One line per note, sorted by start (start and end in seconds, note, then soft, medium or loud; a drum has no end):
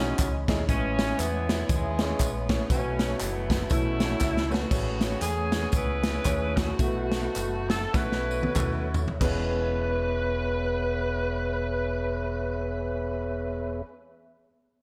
0.00 0.11 B1 loud
0.00 0.67 E3 medium
0.00 0.27 G#3 medium
0.00 0.45 G#3 medium
0.00 0.27 C#4 medium
0.00 0.46 C#4 loud
0.00 0.27 D#4 medium
0.00 0.27 E4 medium
0.00 0.27 F#4 medium
0.00 2.66 C#5 medium
0.00 0.65 D#5 medium
0.00 4.68 B5 medium
0.18 0.44 C#2 medium
0.18 kick loud
0.18 clap loud
0.18 closed hi-hat loud
0.18 tambourine loud
0.48 0.66 D#2 medium
0.48 0.62 G#3 medium
0.48 0.62 C#4 medium
0.48 0.62 D#4 medium
0.48 0.62 E4 medium
0.48 0.62 G#4 loud
0.48 kick loud
0.48 snare loud
0.48 closed hi-hat medium
0.48 tambourine medium
0.68 1.12 A1 loud
0.68 1.45 A2 medium
0.68 1.66 E3 medium
0.68 2.68 G#3 medium
0.68 1.36 G#3 medium
0.68 1.18 G#3 medium
0.68 0.76 B3 medium
0.68 1.15 C#4 loud
0.68 1.36 E4 medium
0.68 1.36 G#4 medium
0.68 1.36 B4 medium
0.68 2.68 E5 medium
0.68 kick loud
0.68 closed hi-hat medium
0.68 tambourine medium
0.75 1.39 C#4 medium
0.99 snare loud
0.99 closed hi-hat medium
0.99 tambourine medium
1.18 1.62 E2 loud
1.18 1.70 G#3 medium
1.18 1.69 B3 loud
1.18 2.15 E4 medium
1.18 clap medium
1.18 closed hi-hat loud
1.18 tambourine medium
1.49 snare loud
1.49 closed hi-hat medium
1.49 tambourine medium
1.69 2.12 D#2 loud
1.69 2.00 C#3 medium
1.69 2.00 G#3 loud
1.69 2.67 B3 medium
1.69 kick loud
1.69 closed hi-hat loud
1.69 tambourine medium
1.99 2.67 C#3 medium
1.99 2.29 G#3 medium
1.99 2.47 G#3 medium
1.99 2.29 C#4 medium
1.99 2.29 E4 medium
1.99 2.29 G#4 medium
1.99 2.29 C#5 medium
1.99 snare loud
1.99 closed hi-hat medium
1.99 tambourine medium
2.19 2.63 A#1 loud
2.19 kick medium
2.19 clap loud
2.19 closed hi-hat loud
2.19 tambourine loud
2.49 2.63 A3 medium
2.49 2.63 C#4 medium
2.49 2.63 E4 medium
2.49 2.63 G#4 medium
2.49 2.63 C#5 medium
2.49 kick medium
2.49 snare loud
2.49 closed hi-hat medium
2.49 tambourine medium
2.70 3.13 B1 loud
2.70 3.46 B2 medium
2.70 3.20 E3 medium
2.70 3.37 A3 medium
2.70 3.67 A3 medium
2.70 3.37 B3 medium
2.70 3.17 C#4 medium
2.70 2.77 D#4 medium
2.70 3.70 F#4 medium
2.70 3.38 F#4 medium
2.70 3.38 B4 medium
2.70 3.69 E5 medium
2.70 4.69 A5 medium
2.70 kick loud
2.70 closed hi-hat medium
2.70 tambourine medium
2.76 3.40 E4 medium
2.99 snare loud
2.99 closed hi-hat medium
2.99 tambourine medium
3.20 3.63 F#1 medium
3.20 3.68 E3 medium
3.20 3.68 F#3 medium
3.20 3.71 B3 loud
3.20 clap medium
3.20 closed hi-hat loud
3.20 tambourine medium
3.50 kick medium
3.50 snare loud
3.50 closed hi-hat medium
3.50 tambourine medium
3.70 4.13 B1 loud
3.70 4.47 B2 medium
3.70 3.95 A3 medium
3.70 4.68 A3 medium
3.70 3.95 C#4 medium
3.70 4.51 C#4 medium
3.70 3.95 E4 medium
3.70 4.70 E4 medium
3.70 4.51 E4 loud
3.70 3.95 F#4 medium
3.70 3.95 B4 medium
3.70 4.70 C#5 medium
3.70 kick loud
3.70 closed hi-hat loud
3.70 tambourine medium
4.00 4.30 A3 medium
4.00 4.30 C#4 medium
4.00 4.30 E4 medium
4.00 4.30 F#4 medium
4.00 4.30 C#5 medium
4.00 snare loud
4.00 closed hi-hat medium
4.00 tambourine medium
4.21 4.64 C#2 loud
4.21 kick loud
4.21 snare medium
4.21 clap loud
4.21 tambourine loud
4.37 snare medium
4.50 4.64 A3 medium
4.50 5.22 B3 medium
4.50 4.64 C#4 medium
4.50 5.22 C#4 medium
4.50 4.64 E4 medium
4.50 5.18 F#4 medium
4.50 4.64 F#4 medium
4.50 4.64 B4 loud
4.50 snare loud
4.50 tambourine medium
4.71 5.14 A1 loud
4.71 5.49 A2 medium
4.71 5.39 A3 medium
4.71 6.78 A3 medium
4.71 5.39 C#4 medium
4.71 5.39 E4 medium
4.71 5.39 G#4 medium
4.71 5.39 B4 medium
4.71 6.78 C#5 medium
4.71 6.78 G#5 medium
4.71 9.17 B5 medium
4.71 kick loud
4.71 crash loud
4.71 tambourine medium
5.01 snare loud
5.01 closed hi-hat medium
5.01 tambourine medium
5.21 5.65 E2 medium
5.21 6.22 B3 medium
5.21 6.22 C#4 medium
5.21 5.72 G#4 loud
5.21 clap medium
5.21 closed hi-hat medium
5.21 tambourine medium
5.52 snare loud
5.52 closed hi-hat medium
5.52 tambourine medium
5.72 6.17 C#2 loud
5.72 6.76 E4 medium
5.72 6.77 G#4 medium
5.72 6.58 B4 loud
5.72 kick loud
5.72 closed hi-hat loud
5.72 tambourine medium
6.03 snare loud
6.03 closed hi-hat medium
6.03 tambourine medium
6.25 6.71 D#2 loud
6.25 6.64 A3 medium
6.25 6.64 C#4 medium
6.25 6.64 E4 medium
6.25 6.64 G#4 medium
6.25 6.64 C#5 medium
6.25 kick medium
6.25 clap loud
6.25 closed hi-hat loud
6.25 tambourine loud
6.56 7.67 A3 medium
6.56 7.69 F#4 loud
6.56 kick loud
6.56 snare loud
6.56 closed hi-hat medium
6.56 tambourine medium
6.79 7.27 B1 loud
6.79 7.66 B2 medium
6.79 7.55 A3 medium
6.79 7.55 B3 medium
6.79 7.55 E4 medium
6.79 7.55 F#4 medium
6.79 6.88 A4 medium
6.79 9.18 A4 medium
6.79 9.18 E5 medium
6.79 7.93 F#5 medium
6.79 kick loud
6.79 closed hi-hat medium
6.79 tambourine medium
6.87 7.58 B4 medium
7.12 snare loud
7.12 closed hi-hat medium
7.12 tambourine medium
7.35 7.85 F#1 medium
7.35 clap medium
7.35 closed hi-hat medium
7.35 tambourine medium
7.69 7.93 A4 medium
7.69 snare loud
7.69 closed hi-hat medium
7.69 tambourine medium
7.93 8.46 B1 loud
7.93 8.90 B2 medium
7.93 8.45 A3 medium
7.93 8.45 C#4 medium
7.93 8.45 E4 medium
7.93 9.04 E4 medium
7.93 8.45 F#4 medium
7.93 9.04 F#4 medium
7.93 8.45 B4 medium
7.93 8.94 B4 loud
7.93 9.19 C#5 medium
7.93 kick loud
7.93 snare medium
7.93 tambourine medium
8.12 snare medium
8.31 tambourine medium
8.43 high tom medium
8.56 9.11 D#2 loud
8.56 9.01 A3 medium
8.56 9.01 C#4 medium
8.56 9.02 E4 medium
8.56 9.02 F#4 medium
8.56 9.02 A4 medium
8.56 kick loud
8.56 clap loud
8.56 mid tom medium
8.56 tambourine loud
8.94 floor tom loud
8.94 tambourine medium
9.08 floor tom medium
9.20 13.81 E1 medium
9.20 13.82 E2 medium
9.20 13.80 G#3 medium
9.20 13.82 B3 medium
9.20 13.81 C#4 medium
9.20 13.82 E4 medium
9.20 13.82 G#4 medium
9.20 13.80 B4 medium
9.20 13.82 C#5 medium
9.20 13.82 E5 medium
9.20 kick loud
9.20 clap medium
9.20 crash medium
9.24 13.84 B4 medium